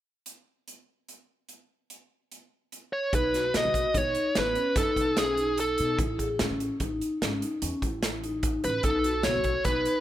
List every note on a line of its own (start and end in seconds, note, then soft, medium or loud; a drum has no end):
0.26 closed hi-hat medium
0.68 closed hi-hat soft
1.09 closed hi-hat soft
1.49 closed hi-hat soft
1.90 closed hi-hat soft
2.32 closed hi-hat soft
2.72 closed hi-hat soft
2.93 3.13 C#5 medium
3.12 3.51 B1 medium
3.12 3.30 D#4 medium
3.12 3.56 B4 medium
3.12 kick loud
3.12 closed hi-hat medium
3.33 3.50 F#4 medium
3.33 snare soft
3.33 closed hi-hat medium
3.53 3.63 B2 medium
3.53 3.88 F#4 medium
3.53 3.97 D#5 medium
3.53 snare medium
3.53 closed hi-hat medium
3.65 3.84 B1 medium
3.74 kick medium
3.74 closed hi-hat medium
3.94 4.14 B1 medium
3.94 4.30 D#4 medium
3.94 4.38 C#5 medium
3.94 kick medium
3.94 closed hi-hat medium
4.15 closed hi-hat soft
4.35 4.55 A1 medium
4.35 4.53 B3 medium
4.35 snare medium
4.35 closed hi-hat medium
4.39 4.75 B4 medium
4.55 4.73 C#4 medium
4.55 closed hi-hat soft
4.76 4.86 F#2 medium
4.76 5.11 D#4 medium
4.76 5.18 A4 medium
4.76 kick medium
4.76 snare soft
4.76 closed hi-hat medium
4.96 5.74 B1 medium
4.96 kick medium
4.96 closed hi-hat medium
5.17 5.35 C#4 medium
5.17 5.59 G#4 medium
5.17 snare medium
5.17 closed hi-hat medium
5.37 5.72 D#4 medium
5.37 closed hi-hat soft
5.58 5.97 A4 medium
5.58 closed hi-hat medium
5.78 5.98 B2 medium
5.78 5.95 D#4 medium
5.78 closed hi-hat medium
5.98 6.37 A1 medium
5.98 6.16 E4 medium
5.98 kick medium
5.98 closed hi-hat medium
6.18 6.36 G#4 medium
6.18 kick medium
6.18 closed hi-hat soft
6.39 6.49 A2 medium
6.39 6.75 C#4 medium
6.39 snare medium
6.39 closed hi-hat medium
6.50 6.69 A1 medium
6.60 closed hi-hat medium
6.80 7.00 A1 medium
6.80 7.16 D#4 medium
6.80 kick medium
6.80 closed hi-hat medium
7.01 closed hi-hat soft
7.21 7.41 G#1 medium
7.21 7.39 C#4 medium
7.21 snare medium
7.21 closed hi-hat medium
7.42 7.59 D#4 medium
7.42 closed hi-hat medium
7.62 7.72 E2 medium
7.62 7.80 C#4 medium
7.62 closed hi-hat medium
7.82 8.60 A1 medium
7.82 8.18 E4 medium
7.82 kick medium
7.82 closed hi-hat medium
8.03 snare medium
8.03 closed hi-hat medium
8.23 8.59 D#4 medium
8.23 closed hi-hat soft
8.43 kick loud
8.43 closed hi-hat medium
8.64 8.84 A1 medium
8.64 8.82 C#4 medium
8.64 8.84 B4 medium
8.64 closed hi-hat medium
8.83 9.23 B1 medium
8.83 9.02 D#4 medium
8.83 9.22 A4 medium
8.83 kick medium
8.83 closed hi-hat medium
9.04 9.22 F#4 medium
9.04 closed hi-hat medium
9.23 9.35 B2 medium
9.23 9.61 F#4 medium
9.23 9.62 C#5 medium
9.23 snare medium
9.23 closed hi-hat medium
9.36 9.55 B1 medium
9.44 kick medium
9.44 closed hi-hat soft
9.65 9.85 B1 medium
9.65 10.00 D#4 medium
9.65 10.00 B4 medium
9.65 kick medium
9.65 closed hi-hat medium
9.85 closed hi-hat soft